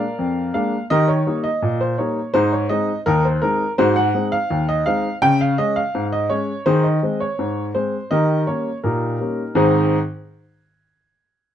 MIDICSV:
0, 0, Header, 1, 2, 480
1, 0, Start_track
1, 0, Key_signature, -4, "major"
1, 0, Tempo, 722022
1, 602, Time_signature, 2, 2, 24, 8
1, 7677, End_track
2, 0, Start_track
2, 0, Title_t, "Upright piano"
2, 0, Program_c, 0, 0
2, 0, Note_on_c, 0, 70, 66
2, 0, Note_on_c, 0, 74, 74
2, 0, Note_on_c, 0, 77, 85
2, 125, Note_on_c, 0, 41, 74
2, 328, Note_off_c, 0, 41, 0
2, 338, Note_off_c, 0, 70, 0
2, 338, Note_off_c, 0, 77, 0
2, 339, Note_off_c, 0, 74, 0
2, 360, Note_on_c, 0, 77, 86
2, 362, Note_on_c, 0, 56, 51
2, 365, Note_on_c, 0, 58, 57
2, 367, Note_on_c, 0, 62, 60
2, 494, Note_off_c, 0, 56, 0
2, 496, Note_off_c, 0, 58, 0
2, 497, Note_off_c, 0, 62, 0
2, 552, Note_off_c, 0, 77, 0
2, 600, Note_on_c, 0, 75, 113
2, 603, Note_on_c, 0, 51, 100
2, 607, Note_on_c, 0, 67, 79
2, 607, Note_on_c, 0, 70, 86
2, 716, Note_off_c, 0, 67, 0
2, 716, Note_off_c, 0, 70, 0
2, 719, Note_on_c, 0, 73, 83
2, 721, Note_off_c, 0, 75, 0
2, 806, Note_off_c, 0, 51, 0
2, 839, Note_on_c, 0, 55, 55
2, 843, Note_on_c, 0, 58, 49
2, 845, Note_on_c, 0, 63, 61
2, 911, Note_off_c, 0, 73, 0
2, 955, Note_on_c, 0, 75, 88
2, 971, Note_off_c, 0, 55, 0
2, 974, Note_off_c, 0, 58, 0
2, 975, Note_off_c, 0, 63, 0
2, 1080, Note_on_c, 0, 46, 79
2, 1184, Note_off_c, 0, 75, 0
2, 1201, Note_on_c, 0, 72, 88
2, 1283, Note_off_c, 0, 46, 0
2, 1316, Note_on_c, 0, 73, 70
2, 1317, Note_on_c, 0, 55, 54
2, 1320, Note_off_c, 0, 72, 0
2, 1320, Note_on_c, 0, 58, 54
2, 1322, Note_on_c, 0, 63, 54
2, 1449, Note_off_c, 0, 55, 0
2, 1451, Note_off_c, 0, 58, 0
2, 1453, Note_off_c, 0, 63, 0
2, 1545, Note_off_c, 0, 73, 0
2, 1553, Note_on_c, 0, 72, 108
2, 1558, Note_on_c, 0, 44, 101
2, 1561, Note_on_c, 0, 68, 79
2, 1563, Note_on_c, 0, 63, 80
2, 1671, Note_off_c, 0, 68, 0
2, 1672, Note_off_c, 0, 63, 0
2, 1675, Note_off_c, 0, 72, 0
2, 1680, Note_on_c, 0, 73, 77
2, 1761, Note_off_c, 0, 44, 0
2, 1791, Note_on_c, 0, 75, 89
2, 1797, Note_on_c, 0, 56, 54
2, 1798, Note_off_c, 0, 73, 0
2, 1799, Note_on_c, 0, 60, 55
2, 1801, Note_on_c, 0, 63, 70
2, 1928, Note_off_c, 0, 56, 0
2, 1930, Note_off_c, 0, 60, 0
2, 1932, Note_off_c, 0, 63, 0
2, 1985, Note_off_c, 0, 75, 0
2, 2034, Note_on_c, 0, 70, 110
2, 2038, Note_on_c, 0, 39, 90
2, 2043, Note_on_c, 0, 63, 80
2, 2151, Note_off_c, 0, 63, 0
2, 2155, Note_off_c, 0, 70, 0
2, 2158, Note_on_c, 0, 72, 79
2, 2241, Note_off_c, 0, 39, 0
2, 2271, Note_on_c, 0, 70, 96
2, 2276, Note_off_c, 0, 72, 0
2, 2277, Note_on_c, 0, 56, 55
2, 2278, Note_on_c, 0, 60, 51
2, 2282, Note_on_c, 0, 63, 57
2, 2408, Note_off_c, 0, 56, 0
2, 2409, Note_off_c, 0, 60, 0
2, 2411, Note_off_c, 0, 63, 0
2, 2464, Note_off_c, 0, 70, 0
2, 2514, Note_on_c, 0, 72, 111
2, 2518, Note_on_c, 0, 44, 113
2, 2522, Note_on_c, 0, 66, 93
2, 2523, Note_on_c, 0, 68, 85
2, 2630, Note_off_c, 0, 66, 0
2, 2630, Note_off_c, 0, 68, 0
2, 2632, Note_on_c, 0, 78, 103
2, 2634, Note_off_c, 0, 72, 0
2, 2720, Note_off_c, 0, 44, 0
2, 2754, Note_on_c, 0, 56, 60
2, 2758, Note_on_c, 0, 60, 66
2, 2761, Note_on_c, 0, 63, 61
2, 2824, Note_off_c, 0, 78, 0
2, 2872, Note_on_c, 0, 77, 99
2, 2885, Note_off_c, 0, 56, 0
2, 2888, Note_off_c, 0, 60, 0
2, 2890, Note_off_c, 0, 63, 0
2, 2995, Note_on_c, 0, 39, 84
2, 3100, Note_off_c, 0, 77, 0
2, 3115, Note_on_c, 0, 75, 99
2, 3197, Note_off_c, 0, 39, 0
2, 3230, Note_on_c, 0, 77, 104
2, 3234, Note_off_c, 0, 75, 0
2, 3236, Note_on_c, 0, 56, 54
2, 3236, Note_on_c, 0, 60, 55
2, 3238, Note_on_c, 0, 63, 63
2, 3367, Note_off_c, 0, 56, 0
2, 3367, Note_off_c, 0, 60, 0
2, 3369, Note_off_c, 0, 63, 0
2, 3423, Note_off_c, 0, 77, 0
2, 3469, Note_on_c, 0, 79, 127
2, 3473, Note_on_c, 0, 49, 104
2, 3591, Note_off_c, 0, 79, 0
2, 3595, Note_on_c, 0, 77, 95
2, 3676, Note_off_c, 0, 49, 0
2, 3711, Note_on_c, 0, 75, 99
2, 3713, Note_off_c, 0, 77, 0
2, 3714, Note_on_c, 0, 56, 55
2, 3716, Note_on_c, 0, 61, 55
2, 3829, Note_on_c, 0, 77, 95
2, 3831, Note_off_c, 0, 75, 0
2, 3845, Note_off_c, 0, 56, 0
2, 3847, Note_off_c, 0, 61, 0
2, 3953, Note_on_c, 0, 44, 82
2, 4022, Note_off_c, 0, 77, 0
2, 4071, Note_on_c, 0, 75, 93
2, 4157, Note_off_c, 0, 44, 0
2, 4186, Note_on_c, 0, 73, 91
2, 4190, Note_on_c, 0, 56, 48
2, 4192, Note_off_c, 0, 75, 0
2, 4192, Note_on_c, 0, 61, 63
2, 4323, Note_off_c, 0, 56, 0
2, 4325, Note_off_c, 0, 61, 0
2, 4418, Note_off_c, 0, 73, 0
2, 4426, Note_on_c, 0, 72, 105
2, 4430, Note_on_c, 0, 51, 101
2, 4435, Note_on_c, 0, 63, 78
2, 4436, Note_on_c, 0, 68, 85
2, 4546, Note_off_c, 0, 63, 0
2, 4546, Note_on_c, 0, 75, 77
2, 4547, Note_off_c, 0, 68, 0
2, 4550, Note_off_c, 0, 72, 0
2, 4636, Note_off_c, 0, 51, 0
2, 4672, Note_on_c, 0, 56, 52
2, 4675, Note_on_c, 0, 60, 57
2, 4778, Note_off_c, 0, 75, 0
2, 4789, Note_on_c, 0, 73, 84
2, 4805, Note_off_c, 0, 56, 0
2, 4807, Note_off_c, 0, 60, 0
2, 4912, Note_on_c, 0, 44, 73
2, 5080, Note_off_c, 0, 73, 0
2, 5117, Note_off_c, 0, 44, 0
2, 5149, Note_on_c, 0, 72, 86
2, 5153, Note_on_c, 0, 56, 53
2, 5155, Note_on_c, 0, 60, 55
2, 5286, Note_off_c, 0, 56, 0
2, 5287, Note_off_c, 0, 60, 0
2, 5380, Note_off_c, 0, 72, 0
2, 5389, Note_on_c, 0, 75, 94
2, 5394, Note_on_c, 0, 51, 93
2, 5397, Note_on_c, 0, 67, 68
2, 5397, Note_on_c, 0, 70, 76
2, 5585, Note_off_c, 0, 75, 0
2, 5599, Note_off_c, 0, 51, 0
2, 5621, Note_off_c, 0, 67, 0
2, 5621, Note_off_c, 0, 70, 0
2, 5632, Note_on_c, 0, 73, 75
2, 5636, Note_on_c, 0, 55, 47
2, 5637, Note_on_c, 0, 58, 50
2, 5641, Note_on_c, 0, 61, 48
2, 5769, Note_off_c, 0, 55, 0
2, 5770, Note_off_c, 0, 58, 0
2, 5772, Note_off_c, 0, 61, 0
2, 5827, Note_off_c, 0, 73, 0
2, 5874, Note_on_c, 0, 70, 71
2, 5877, Note_on_c, 0, 46, 69
2, 5882, Note_on_c, 0, 63, 52
2, 5883, Note_on_c, 0, 67, 53
2, 6084, Note_off_c, 0, 46, 0
2, 6119, Note_on_c, 0, 55, 42
2, 6121, Note_on_c, 0, 58, 40
2, 6125, Note_on_c, 0, 61, 44
2, 6253, Note_off_c, 0, 55, 0
2, 6254, Note_off_c, 0, 58, 0
2, 6257, Note_off_c, 0, 61, 0
2, 6336, Note_off_c, 0, 70, 0
2, 6338, Note_off_c, 0, 63, 0
2, 6339, Note_off_c, 0, 67, 0
2, 6350, Note_on_c, 0, 44, 107
2, 6353, Note_on_c, 0, 51, 91
2, 6355, Note_on_c, 0, 60, 87
2, 6357, Note_on_c, 0, 63, 88
2, 6358, Note_on_c, 0, 72, 64
2, 6359, Note_on_c, 0, 68, 90
2, 6624, Note_off_c, 0, 44, 0
2, 6626, Note_off_c, 0, 51, 0
2, 6627, Note_off_c, 0, 60, 0
2, 6628, Note_off_c, 0, 63, 0
2, 6629, Note_off_c, 0, 68, 0
2, 6629, Note_off_c, 0, 72, 0
2, 7677, End_track
0, 0, End_of_file